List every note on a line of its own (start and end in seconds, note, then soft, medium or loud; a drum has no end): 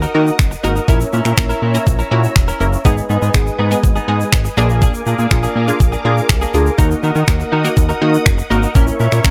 0.00 0.13 D#4 medium
0.00 0.14 F#4 medium
0.00 0.84 A#4 medium
0.00 0.14 A#4 medium
0.00 0.87 D#5 medium
0.00 0.87 F#5 medium
0.00 0.87 D#6 medium
0.00 shaker soft
0.14 0.31 D#3 loud
0.14 0.50 A#3 medium
0.14 0.29 D#4 medium
0.14 0.50 D#4 medium
0.14 0.50 F#4 medium
0.14 0.26 F#4 medium
0.14 0.50 A#4 medium
0.14 0.25 A#4 medium
0.27 muted clean electric guitar stroke soft
0.27 shaker soft
0.39 0.55 F#1 medium
0.39 finger snap loud
0.39 muted clean electric guitar stroke soft
0.39 kick loud
0.39 shaker medium
0.51 muted clean electric guitar stroke medium
0.51 shaker medium
0.63 0.80 G#1 medium
0.63 0.81 A#3 medium
0.63 0.76 D#4 medium
0.63 0.81 D#4 medium
0.63 0.81 F#4 medium
0.63 0.75 F#4 medium
0.63 0.81 A#4 loud
0.63 0.74 A#4 medium
0.63 shaker soft
0.76 0.88 D#4 medium
0.76 0.88 F#4 medium
0.76 0.88 A#4 medium
0.76 shaker soft
0.88 1.04 A#1 loud
0.88 1.23 A#3 medium
0.88 1.07 C#4 medium
0.88 1.23 C#4 medium
0.88 1.24 E4 medium
0.88 1.00 E4 medium
0.88 1.24 A#4 loud
0.88 0.99 A#4 loud
0.88 2.83 C#5 medium
0.88 2.83 E5 medium
0.88 2.83 A#5 medium
0.88 2.83 E6 medium
0.88 kick loud
0.88 shaker medium
1.00 muted clean electric guitar stroke soft
1.00 shaker soft
1.13 1.21 A#2 medium
1.13 1.25 C#4 medium
1.13 1.24 E4 medium
1.13 1.24 A#4 medium
1.13 shaker soft
1.25 1.33 A#2 loud
1.25 1.36 C#4 medium
1.25 1.37 E4 medium
1.25 1.37 A#4 medium
1.25 finger snap medium
1.25 shaker soft
1.37 1.54 A#1 medium
1.37 1.64 A#3 medium
1.37 1.64 C#4 medium
1.37 1.64 E4 medium
1.37 1.64 A#4 loud
1.37 finger snap loud
1.37 kick loud
1.37 shaker medium
1.49 1.61 C#4 medium
1.49 1.61 E4 medium
1.49 1.62 A#4 medium
1.49 shaker soft
1.62 1.78 A#2 loud
1.62 1.77 C#4 medium
1.62 1.74 E4 medium
1.62 1.73 A#4 medium
1.74 2.01 A#3 medium
1.74 2.01 C#4 medium
1.74 2.01 E4 medium
1.74 2.01 A#4 loud
1.74 muted clean electric guitar stroke soft
1.74 shaker medium
1.86 2.03 A#1 loud
1.86 muted clean electric guitar stroke soft
1.86 kick loud
1.86 shaker medium
1.99 2.10 C#4 medium
1.99 2.11 E4 medium
1.99 2.11 A#4 medium
1.99 shaker soft
2.11 2.27 A#2 medium
2.11 2.46 A#3 medium
2.11 2.30 C#4 medium
2.11 2.46 C#4 medium
2.11 2.46 E4 medium
2.11 2.23 E4 medium
2.11 2.47 F#4 loud
2.11 2.22 A#4 loud
2.24 muted clean electric guitar stroke soft
2.24 shaker soft
2.36 2.52 E1 medium
2.36 finger snap loud
2.36 muted clean electric guitar stroke soft
2.36 kick loud
2.36 shaker medium
2.48 2.59 C#4 medium
2.48 2.60 E4 medium
2.48 2.60 A#4 medium
2.48 shaker medium
2.60 2.76 F#1 medium
2.60 2.78 A#3 medium
2.60 2.78 C#4 medium
2.60 2.78 E4 medium
2.60 2.78 A#4 loud
2.60 shaker soft
2.73 muted clean electric guitar stroke soft
2.73 shaker soft
2.85 3.01 G#1 loud
2.85 3.20 G#3 medium
2.85 3.20 B3 medium
2.85 3.04 B3 medium
2.85 3.20 D#4 medium
2.85 2.97 D#4 medium
2.85 3.20 G#4 loud
2.85 2.96 G#4 medium
2.85 4.56 B4 medium
2.85 4.56 D#5 medium
2.85 6.75 G#5 medium
2.85 4.56 D#6 medium
2.85 kick loud
2.85 shaker medium
2.97 muted clean electric guitar stroke soft
2.97 shaker soft
3.09 3.18 G#2 loud
3.09 3.22 B3 medium
3.09 3.21 D#4 medium
3.09 3.21 G#4 medium
3.09 shaker soft
3.22 3.30 G#2 loud
3.22 3.33 B3 medium
3.22 3.33 D#4 medium
3.22 3.34 G#4 medium
3.22 shaker soft
3.34 3.50 G#1 loud
3.34 3.60 G#3 medium
3.34 3.61 B3 medium
3.34 3.61 D#4 medium
3.34 3.61 G#4 loud
3.34 finger snap loud
3.34 muted clean electric guitar stroke soft
3.34 kick loud
3.34 shaker medium
3.46 muted clean electric guitar stroke soft
3.46 shaker soft
3.59 3.75 G#2 loud
3.59 3.77 B3 medium
3.59 3.71 D#4 medium
3.59 3.70 G#4 medium
3.71 3.97 G#3 medium
3.71 3.97 B3 medium
3.71 3.97 D#4 medium
3.71 3.98 G#4 loud
3.71 muted clean electric guitar stroke soft
3.71 shaker medium
3.83 4.00 G#1 loud
3.83 muted clean electric guitar stroke soft
3.83 kick loud
3.83 shaker medium
3.96 4.07 B3 medium
3.96 4.07 D#4 medium
3.96 4.08 G#4 medium
3.96 shaker soft
4.08 4.24 G#2 medium
4.08 4.43 G#3 medium
4.08 4.23 B3 medium
4.08 4.43 B3 medium
4.08 4.43 D#4 medium
4.08 4.20 D#4 medium
4.08 4.43 G#4 medium
4.08 4.19 G#4 medium
4.20 muted clean electric guitar stroke soft
4.20 shaker soft
4.33 4.49 G#1 medium
4.33 finger snap loud
4.33 muted clean electric guitar stroke soft
4.33 kick loud
4.33 shaker medium
4.45 muted clean electric guitar stroke soft
4.45 shaker medium
4.57 4.89 A#1 loud
4.57 5.16 A#3 loud
4.57 4.69 A#3 medium
4.57 5.16 D4 medium
4.57 4.69 D4 loud
4.57 5.16 F4 medium
4.57 5.16 G#4 loud
4.57 4.68 G#4 loud
4.57 9.30 A#4 medium
4.57 6.76 F5 medium
4.57 6.76 D6 medium
4.57 shaker soft
4.69 4.80 A#3 medium
4.69 4.81 D4 medium
4.69 4.82 G#4 medium
4.69 shaker soft
4.82 5.00 A#3 medium
4.82 4.94 D4 medium
4.82 4.93 G#4 loud
4.82 kick loud
4.82 shaker medium
4.94 muted clean electric guitar stroke soft
4.94 shaker soft
5.06 5.14 A#2 loud
5.06 5.18 A#3 medium
5.06 5.18 D4 medium
5.06 5.17 G#4 medium
5.06 shaker soft
5.18 5.27 A#2 medium
5.18 5.30 A#3 medium
5.18 5.30 D4 medium
5.18 5.31 G#4 medium
5.18 shaker medium
5.31 5.47 A#1 loud
5.31 5.57 A#3 medium
5.31 5.57 D4 medium
5.31 5.57 F4 medium
5.31 5.58 G#4 medium
5.31 finger snap loud
5.31 muted clean electric guitar stroke soft
5.31 kick loud
5.31 shaker medium
5.43 5.54 A#3 medium
5.43 5.55 D4 medium
5.43 5.55 G#4 medium
5.43 shaker soft
5.55 5.72 A#2 medium
5.55 5.70 A#3 medium
5.55 5.67 D4 medium
5.55 5.67 G#4 medium
5.68 5.94 A#3 medium
5.68 5.94 D4 medium
5.68 5.94 F4 medium
5.68 5.94 G#4 loud
5.68 muted clean electric guitar stroke soft
5.68 shaker medium
5.80 5.96 A#1 medium
5.80 muted clean electric guitar stroke soft
5.80 kick loud
5.80 shaker medium
5.92 6.03 A#3 soft
5.92 6.04 D4 medium
5.92 6.04 G#4 medium
5.92 shaker soft
6.04 6.21 A#2 loud
6.04 6.23 A#3 medium
6.04 6.40 A#3 medium
6.04 6.40 D4 medium
6.04 6.17 D4 medium
6.04 6.40 F4 medium
6.04 6.40 G#4 loud
6.04 6.16 G#4 medium
6.17 muted clean electric guitar stroke soft
6.17 shaker soft
6.29 6.45 C2 loud
6.29 finger snap loud
6.29 muted clean electric guitar stroke soft
6.29 kick loud
6.29 shaker medium
6.41 6.53 A#3 medium
6.41 6.53 D4 medium
6.41 6.53 G#4 medium
6.41 shaker medium
6.54 6.70 D2 medium
6.54 6.71 A#3 medium
6.54 6.72 D4 medium
6.54 6.72 F4 medium
6.54 6.72 G#4 loud
6.54 muted clean electric guitar stroke soft
6.54 shaker soft
6.66 muted clean electric guitar stroke soft
6.66 shaker soft
6.78 6.95 D#2 loud
6.78 7.14 A#3 medium
6.78 6.97 D#4 medium
6.78 7.14 D#4 medium
6.78 7.14 F#4 medium
6.78 6.90 F#4 medium
6.78 7.14 A#4 loud
6.78 6.89 A#4 medium
6.78 8.73 D#5 medium
6.78 8.73 F#5 medium
6.78 8.73 D#6 medium
6.78 kick loud
6.78 shaker medium
6.91 muted clean electric guitar stroke soft
6.91 shaker medium
7.03 7.11 D#3 loud
7.03 7.15 D#4 medium
7.03 7.15 F#4 medium
7.03 7.14 A#4 medium
7.03 shaker soft
7.15 7.23 D#3 loud
7.15 7.26 D#4 medium
7.15 7.27 F#4 medium
7.15 7.27 A#4 medium
7.15 shaker medium
7.28 7.44 D#2 loud
7.28 7.54 A#3 medium
7.28 7.54 D#4 medium
7.28 7.54 F#4 medium
7.28 7.54 A#4 loud
7.28 finger snap loud
7.28 kick loud
7.28 shaker medium
7.40 muted clean electric guitar stroke soft
7.40 shaker soft
7.52 7.68 D#3 loud
7.52 7.71 D#4 medium
7.52 7.64 F#4 loud
7.52 7.63 A#4 loud
7.64 7.91 A#3 medium
7.64 7.91 D#4 medium
7.64 7.91 F#4 medium
7.64 7.91 A#4 loud
7.64 muted clean electric guitar stroke medium
7.64 shaker medium
7.77 7.93 D#2 loud
7.77 muted clean electric guitar stroke soft
7.77 kick loud
7.77 shaker medium
7.89 8.00 D#4 medium
7.89 8.01 F#4 medium
7.89 8.01 A#4 medium
7.89 shaker soft
8.01 8.18 D#3 medium
8.01 8.37 A#3 medium
8.01 8.16 D#4 medium
8.01 8.37 D#4 medium
8.01 8.37 F#4 medium
8.01 8.13 F#4 medium
8.01 8.37 A#4 loud
8.01 8.12 A#4 medium
8.14 muted clean electric guitar stroke soft
8.14 shaker soft
8.26 8.42 F#1 medium
8.26 finger snap loud
8.26 muted clean electric guitar stroke soft
8.26 kick loud
8.26 shaker medium
8.38 muted clean electric guitar stroke medium
8.38 shaker medium
8.50 8.67 G#1 medium
8.50 8.68 A#3 loud
8.50 8.63 D#4 medium
8.50 8.68 D#4 medium
8.50 8.68 F#4 medium
8.50 8.62 F#4 medium
8.50 8.68 A#4 loud
8.50 8.62 A#4 medium
8.50 shaker soft
8.63 8.74 D#4 medium
8.63 8.75 F#4 medium
8.63 8.75 A#4 medium
8.63 shaker soft
8.75 8.91 A#1 loud
8.75 9.10 A#3 medium
8.75 8.94 C#4 medium
8.75 9.10 C#4 medium
8.75 9.10 E4 medium
8.75 8.87 E4 loud
8.75 9.11 A#4 loud
8.75 8.86 A#4 loud
8.75 9.30 C#5 medium
8.75 9.30 E5 medium
8.75 9.30 C#6 medium
8.75 kick loud
8.75 shaker medium
8.87 muted clean electric guitar stroke soft
8.87 shaker medium
9.00 9.08 A#2 loud
9.00 9.12 C#4 medium
9.00 9.11 E4 medium
9.00 9.11 A#4 medium
9.00 shaker soft
9.12 9.20 A#2 loud
9.12 9.23 C#4 medium
9.12 9.24 E4 medium
9.12 9.24 A#4 medium
9.12 finger snap medium
9.12 shaker medium
9.24 9.30 A#1 medium
9.24 9.30 A#3 medium
9.24 9.30 C#4 medium
9.24 9.30 E4 medium
9.24 9.30 A#4 medium
9.24 finger snap loud
9.24 muted clean electric guitar stroke soft
9.24 kick loud
9.24 shaker medium